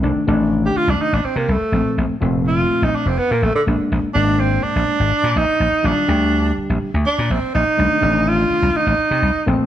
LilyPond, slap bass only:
\new Staff \with { instrumentName = "Slap bass" } { \clef bass \time 4/4 \key c \dorian \tempo 4 = 124 c,16 r16 a,,4 r16 c,16 r16 a,,16 r16 c16 c,16 r16 bes,,16 r16 | bes,,16 r16 f,,4 r16 bes,,16 r16 f,,16 r16 bes,16 bes,,16 r16 bes,,16 r16 | bes,,16 r16 aes,,4 r16 bes,,16 r16 aes,,16 r16 bes,16 bes,,16 r16 bes,,16 r16 | bes,,16 r16 d,4 r16 bes,,16 r16 d,16 r16 bes,16 bes,,16 r16 bes,,16 r16 |
c,16 r16 a,,4 r16 c,16 r16 a,,16 r16 c16 c,16 r16 bes,,16 r16 | }